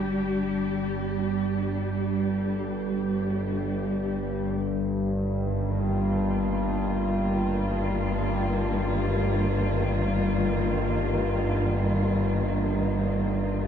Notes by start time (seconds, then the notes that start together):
Already playing: G1 G2 G3 D4 G4
4.59 G2
5.11 D#3
5.53 A#3
5.71 F4